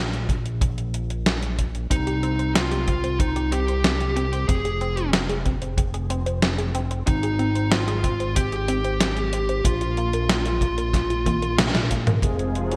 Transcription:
Already playing: analog synth bass A#1
0.13 closed hi-hat
0.29 kick, closed hi-hat
0.46 closed hi-hat
0.61 kick, closed hi-hat
0.78 closed hi-hat
0.94 closed hi-hat
1.10 closed hi-hat
1.26 snare, closed hi-hat
1.43 closed hi-hat
1.59 kick, closed hi-hat
1.75 closed hi-hat
1.91 analog synth bass C2, synth arpeggio sound C4, lead electric guitar D#4, kick, closed hi-hat
2.07 synth arpeggio sound G4, closed hi-hat
2.23 synth arpeggio sound C4, closed hi-hat
2.39 synth arpeggio sound C5, closed hi-hat
2.55 synth arpeggio sound C4, lead electric guitar F4, snare, closed hi-hat
2.71 synth arpeggio sound G4, closed hi-hat
2.87 synth arpeggio sound C4, kick, closed hi-hat
3.04 synth arpeggio sound C5, closed hi-hat
3.20 synth arpeggio sound C4, lead electric guitar D#4, kick, closed hi-hat
3.36 synth arpeggio sound G4, closed hi-hat
3.52 synth arpeggio sound C4, lead electric guitar G4, closed hi-hat
3.68 synth arpeggio sound C5, closed hi-hat
3.84 synth arpeggio sound C4, snare, closed hi-hat
4.00 synth arpeggio sound G4, closed hi-hat
4.16 synth arpeggio sound C4, lead electric guitar G4, closed hi-hat
4.33 synth arpeggio sound C5, closed hi-hat
4.48 analog synth bass F1, synth arpeggio sound C4, lead electric guitar G#4, kick, closed hi-hat
4.65 synth arpeggio sound G#4, closed hi-hat
4.81 synth arpeggio sound C4, closed hi-hat
4.97 synth arpeggio sound C5, closed hi-hat
5.13 synth arpeggio sound C4, snare, closed hi-hat
5.29 synth arpeggio sound G#4, closed hi-hat
5.45 synth arpeggio sound C4, kick, closed hi-hat
5.62 synth arpeggio sound C5, closed hi-hat
5.78 synth arpeggio sound C4, kick, closed hi-hat
5.94 synth arpeggio sound G#4, closed hi-hat
6.10 synth arpeggio sound C4, closed hi-hat
6.26 synth arpeggio sound C5, closed hi-hat
6.42 synth arpeggio sound C4, snare, closed hi-hat
6.58 synth arpeggio sound G#4, closed hi-hat
6.75 synth arpeggio sound C4, closed hi-hat
6.91 synth arpeggio sound C5, closed hi-hat
7.07 analog synth bass G#1, synth arpeggio sound C4, lead electric guitar D#4, kick, closed hi-hat
7.23 synth arpeggio sound G#4, closed hi-hat
7.39 synth arpeggio sound C4, closed hi-hat
7.55 synth arpeggio sound C5, closed hi-hat
7.72 synth arpeggio sound C4, lead electric guitar F4, snare, closed hi-hat
7.88 synth arpeggio sound G#4, closed hi-hat
8.04 synth arpeggio sound C4, kick, closed hi-hat
8.20 synth arpeggio sound C5, closed hi-hat
8.36 synth arpeggio sound C4, lead electric guitar G4, kick, closed hi-hat
8.52 synth arpeggio sound G#4, closed hi-hat
8.68 synth arpeggio sound C4, closed hi-hat
8.85 synth arpeggio sound C5, closed hi-hat
9.01 synth arpeggio sound C4, snare, closed hi-hat
9.17 synth arpeggio sound G#4, closed hi-hat
9.33 synth arpeggio sound C4, closed hi-hat
9.49 synth arpeggio sound C5, closed hi-hat
9.65 analog synth bass A#1, synth arpeggio sound A#3, lead electric guitar F4, kick, closed hi-hat
9.81 synth arpeggio sound F4, closed hi-hat
9.97 synth arpeggio sound A#3, closed hi-hat
10.13 synth arpeggio sound A#4, closed hi-hat
10.29 synth arpeggio sound A#3, snare, closed hi-hat
10.46 synth arpeggio sound F4, closed hi-hat
10.61 synth arpeggio sound A#3, kick, closed hi-hat
10.78 synth arpeggio sound A#4, closed hi-hat
10.93 synth arpeggio sound A#3, kick, snare, closed hi-hat
11.10 synth arpeggio sound F4, closed hi-hat
11.26 synth arpeggio sound A#3, kick, closed hi-hat, high tom
11.42 synth arpeggio sound A#4, closed hi-hat
11.58 synth arpeggio sound A#3, snare, closed hi-hat, mid tom
11.75 synth arpeggio sound F4, snare, closed hi-hat
11.91 synth arpeggio sound A#3, kick, closed hi-hat
12.07 synth arpeggio sound A#4, closed hi-hat, mid tom
12.22 analog synth bass F1, supersaw synth C3 F3 G#3 F4 G#4, analog polysynth C4 F4 G#4 C5, synth arpeggio sound C4, kick, closed hi-hat, riser
12.39 synth arpeggio sound G#4, closed hi-hat
12.55 synth arpeggio sound C4, closed hi-hat
12.71 synth arpeggio sound C5, closed hi-hat

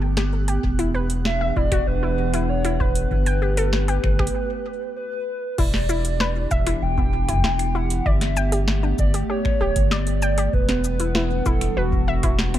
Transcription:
Already playing: analog synth bass G1, ambient pad A3 B3 G4, synth texture G4 F#6
0.17 synth arpeggio sound G4, snare, closed hi-hat
0.48 synth arpeggio sound G4, closed hi-hat
0.63 analog synth bass E1, ambient pad E3 D4 F#5, kick
0.79 synth arpeggio sound E4, closed hi-hat
0.94 synth arpeggio sound B4
1.10 closed hi-hat
1.25 soft synth lead E5, snare
1.41 synth arpeggio sound E5
1.56 analog synth bass E1, synth arpeggio sound E4, soft synth lead D5, kick
1.72 synth arpeggio sound F#4, finger snap, kick, closed hi-hat
1.87 analog synth bass E1, soft synth lead B4
2.03 synth arpeggio sound E4
2.34 synth arpeggio sound E4, finger snap, closed hi-hat
2.49 soft synth lead C#5
2.65 synth arpeggio sound E4, finger snap, closed hi-hat
2.80 soft synth lead B4, synth arpeggio sound B4, kick
2.95 closed hi-hat
3.11 analog synth bass G1, ambient pad A3 B3 G4, kick
3.26 synth arpeggio sound G5, closed hi-hat
3.42 synth arpeggio sound G4
3.57 synth arpeggio sound A4, closed hi-hat
3.73 snare
3.88 synth arpeggio sound G4, closed hi-hat
4.04 analog synth bass G1, finger snap, kick
4.19 synth arpeggio sound G4, finger snap, kick
4.27 closed hi-hat
4.96 soft synth lead B4
5.58 analog synth bass E1, ambient pad E3 B3 D4 E4 G4, synth arpeggio sound E4, soft synth lead D5, kick, crash
5.74 snare
5.89 synth arpeggio sound E4, cabasa
6.05 closed hi-hat
6.20 synth arpeggio sound B4, snare
6.51 analog synth bass E1, soft synth lead E5, synth arpeggio sound E5, kick, cabasa
6.67 synth arpeggio sound E4, finger snap, closed hi-hat
6.82 analog synth bass E1, soft synth lead G5
6.98 synth arpeggio sound B3, kick
7.29 synth arpeggio sound E4, finger snap, kick, closed hi-hat
7.31 kick
7.33 kick
7.35 kick
7.37 kick
7.40 kick
7.42 synth arpeggio sound E4, kick, snare
7.59 finger snap, closed hi-hat
7.75 synth arpeggio sound E4, soft synth lead F#5
7.90 closed hi-hat
8.06 analog synth bass G1, ambient pad A3, synth arpeggio sound D5, soft synth lead E5, kick
8.21 snare, closed hi-hat
8.37 synth arpeggio sound G5, cabasa
8.52 synth arpeggio sound G4, closed hi-hat
8.68 snare
8.83 synth arpeggio sound D4
8.99 analog synth bass G1, soft synth lead D5, kick, cabasa
9.14 synth arpeggio sound G4, closed hi-hat
9.30 synth arpeggio sound G4, soft synth lead C#5
9.45 finger snap, kick
9.60 analog synth bass D1, synth arpeggio sound G4
9.76 analog synth bass G1, kick, closed hi-hat
9.91 soft synth lead D5, synth arpeggio sound D5, snare
10.07 closed hi-hat
10.22 synth arpeggio sound G5, cabasa
10.38 synth arpeggio sound G4, closed hi-hat
10.53 analog synth bass E1, ambient pad E3 G3 D4 F#5, soft synth lead B4, kick
10.69 synth arpeggio sound B3, snare, closed hi-hat
10.84 cabasa
11.00 synth arpeggio sound E4, closed hi-hat
11.15 synth arpeggio sound E4, snare
11.46 analog synth bass E1, synth arpeggio sound E4, soft synth lead A4, kick, cabasa
11.61 finger snap, closed hi-hat
11.77 analog synth bass E1, soft synth lead F#4, synth arpeggio sound B4
11.92 kick
12.08 synth arpeggio sound E5
12.23 synth arpeggio sound E4, finger snap, kick, closed hi-hat
12.39 snare
12.54 synth arpeggio sound B3, finger snap, closed hi-hat

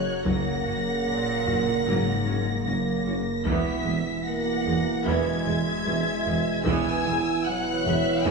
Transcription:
Already playing: sub bass F#1, french horn section F#3, violin section C#5 F#6
0.26 sub bass F#1, double bass section F#1, tuba F#1, cello section F#2, trombone section C#3 A#3, viola section F#3 A#3, french horn section A#3, violin section F#5 A#6, taiko
0.66 tuba F#1, double bass section F#1, cello section F#2, viola section C#4 F#4
1.06 cello section A#2
1.46 double bass section F#1, tuba F#1, viola section C#4 F#4, taiko low
1.86 tuba F#1, double bass section F#1, cello section G#2, viola section F#3 A#3
2.26 tuba F#1, double bass section F#1, viola section C#4 F#4
2.65 tuba F#1, double bass section F#1, cello section F#2, french horn section A#3, viola section A#3 C#4, violin section A#6
3.06 tuba F#1, double bass section F#1, viola section C#4 F#4
3.45 sub bass E1, tuba E1, double bass section E1, cello section E2, trombone section B2 E3, viola section E3 B3, french horn section B3, violin section E5 B6, taiko
3.86 tuba E1, double bass section E1, cello section E2, viola section G#3 G#4
4.25 french horn section A#3, violin section F#5 A#6
4.66 tuba E1, double bass section E1, cello section E2, viola section G#3 G#4, taiko low
5.05 tuba E1, double bass section E1, cello section E2, viola section E3 B3, french horn section G#3, violin section E5 G#6
5.45 tuba E1, double bass section E1, cello section E2, viola section G#3 G#4, violin section E5
5.86 tuba E1, double bass section E1, cello section E2, viola section E3 E4
6.25 tuba E1, double bass section E1, cello section E2, viola section G#3 G#4
6.64 sub bass E1, tuba E1, double bass section E1, cello section E2, trombone section E3 B3, french horn section E3, viola section E3 B3, violin section G#5 E6, taiko
7.05 tuba E1, double bass section E1, cello section E2, viola section G#3 G#4
7.45 french horn section F#3, violin section F#5 F#6
7.85 tuba E1, double bass section E1, cello section E2, viola section G#3 G#4, violin section E5, taiko low
8.25 tuba E1, double bass section E1, cello section E2, french horn section E3, viola section E3 B3, violin section G#5 E6

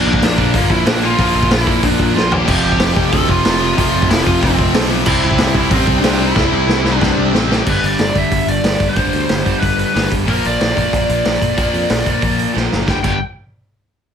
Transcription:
Already playing: overdriven electric guitar A#2 F3 A#3
0.06 picked electric bass A#1, lead electric guitar D4
0.13 kick
0.22 picked electric bass A#1, snare, open hi-hat
0.37 picked electric bass A#1, overdriven electric guitar A#2 F3 A#3, lead electric guitar D4, kick
0.54 picked electric bass G1, lead electric guitar A#3, kick, open hi-hat
0.69 picked electric bass A#1, lead electric guitar E4, kick
0.84 picked electric bass A#1, overdriven electric guitar A#2 F3 A#3, lead electric guitar D4, snare, open hi-hat
1.02 overdriven electric guitar A#2 F3 A#3, lead electric guitar F4
1.17 picked electric bass A#1, overdriven electric guitar A#2 F3 A#3, kick, open hi-hat
1.35 picked electric bass A#1
1.43 kick
1.51 picked electric bass A#1, lead electric guitar E4, snare, open hi-hat
1.65 picked electric bass A#1, overdriven electric guitar A#2 F3 A#3, kick
1.83 picked electric bass A#1, lead electric guitar D4, kick, open hi-hat
1.99 picked electric bass A#1, kick
2.14 picked electric bass A#1, overdriven electric guitar A#2 F3 A#3, lead electric guitar F4, snare
2.31 overdriven electric guitar A#2 F3 A#3, lead electric guitar G4, floor tom
2.47 picked electric bass F1, overdriven electric guitar F2 C3 F3, kick, crash
2.64 picked electric bass F1
2.72 kick
2.79 picked electric bass F1, snare, open hi-hat
2.96 picked electric bass F1, overdriven electric guitar F2 C3 F3, kick
3.11 picked electric bass D2, distorted electric guitar F2 C3 F3, lead electric guitar A4, kick, open hi-hat
3.29 picked electric bass F1, lead electric guitar F4, kick
3.44 picked electric bass F1, overdriven electric guitar F2 C3 F3, snare, open hi-hat
3.61 overdriven electric guitar F2 C3 F3
3.77 picked electric bass F1, overdriven electric guitar F2 C3 F3, lead electric guitar F4, kick, open hi-hat
3.94 picked electric bass F1
4.02 kick
4.09 picked electric bass F1, lead electric guitar E4, snare, open hi-hat
4.23 picked electric bass F1, overdriven electric guitar F2 C3 F3, lead electric guitar F4, kick
4.41 picked electric bass F1, distorted electric guitar F2 C3 F3, lead electric guitar C4, kick, open hi-hat
4.59 picked electric bass F1, kick
4.73 picked electric bass B1, overdriven electric guitar F2 C3 F3, snare, open hi-hat
4.90 overdriven electric guitar F2 C3 F3
5.05 picked electric bass C2, overdriven electric guitar C3 G3 C4, lead electric guitar E4, kick, crash
5.22 picked electric bass C2, lead electric guitar E4
5.31 kick
5.38 picked electric bass C2, snare, open hi-hat
5.54 picked electric bass C2, overdriven electric guitar C3 G3 C4, lead electric guitar E4, kick
5.70 picked electric bass A1, distorted electric guitar C3 G3 C4, lead electric guitar C4, kick, open hi-hat
5.87 picked electric bass C2, kick
5.98 overdriven electric guitar C3, lead electric guitar D4
6.03 picked electric bass C2, overdriven electric guitar G3 C4, snare, open hi-hat
6.19 overdriven electric guitar C3 G3 C4, lead electric guitar E4
6.35 picked electric bass C2, overdriven electric guitar C3 G3 C4, kick, snare
6.52 picked electric bass C2
6.67 picked electric bass C2, snare
6.84 picked electric bass C2, overdriven electric guitar C3 G3 C4, snare
6.98 picked electric bass C2, distorted electric guitar C3, lead electric guitar D4, kick
7.02 distorted electric guitar G3 C4, snare
7.17 picked electric bass C2
7.33 picked electric bass A1, overdriven electric guitar C3 G3 C4, snare
7.49 overdriven electric guitar C3 G3 C4, snare
7.65 picked electric bass G1, overdriven electric guitar G2 D3 G3, kick, crash
7.70 lead electric guitar B4
7.84 picked electric bass G1, lead electric guitar D5, open hi-hat
7.99 picked electric bass G1, lead electric guitar D5, snare, open hi-hat
8.14 picked electric bass G1, overdriven electric guitar G2 D3 G3, lead electric guitar E5, kick, open hi-hat
8.31 picked electric bass G1, kick, open hi-hat
8.47 picked electric bass G1, lead electric guitar D5, open hi-hat
8.64 picked electric bass G1, overdriven electric guitar G2 D3 G3, snare, open hi-hat
8.80 picked electric bass G1, kick, open hi-hat
8.89 lead electric guitar C5
8.96 picked electric bass G1, overdriven electric guitar G2 D3 G3, kick, open hi-hat
9.13 picked electric bass D2, open hi-hat
9.29 picked electric bass G1, snare, open hi-hat
9.44 picked electric bass G1, overdriven electric guitar G2 D3 G3, kick, open hi-hat
9.60 picked electric bass G1, lead electric guitar B4, kick, open hi-hat
9.79 lead electric guitar B4, open hi-hat
9.93 picked electric bass G1, overdriven electric guitar G2 D3 G3, snare, open hi-hat
10.12 picked electric bass G1, kick, open hi-hat
10.26 picked electric bass A#1, overdriven electric guitar A#2 F3 A#3, kick, open hi-hat
10.30 lead electric guitar A#4
10.45 picked electric bass A#1, lead electric guitar D5, open hi-hat
10.61 picked electric bass A#1, lead electric guitar D5, snare, open hi-hat
10.75 picked electric bass A#1, overdriven electric guitar A#2 F3 A#3, lead electric guitar D5, kick, open hi-hat
10.93 picked electric bass A#1, kick, open hi-hat
11.09 picked electric bass A#1, open hi-hat
11.24 picked electric bass A#1, overdriven electric guitar A#2 F3 A#3, snare, open hi-hat
11.42 picked electric bass A#1, kick, open hi-hat
11.56 picked electric bass A#1, overdriven electric guitar A#2 F3 A#3, kick, open hi-hat
11.74 picked electric bass F2, open hi-hat
11.90 picked electric bass A#1, snare, open hi-hat
12.04 picked electric bass A#1, overdriven electric guitar A#2 F3 A#3, kick, open hi-hat
12.22 picked electric bass A#1, kick, open hi-hat
12.39 open hi-hat
12.53 picked electric bass A#1, overdriven electric guitar A#2 F3 A#3, snare
12.72 picked electric bass F#1, snare
12.86 picked electric bass G1, overdriven electric guitar G2 D3 G3, kick, snare
12.90 lead electric guitar G5
13.03 picked electric bass G1, overdriven electric guitar G2 D3 G3, lead electric guitar G5, kick, crash

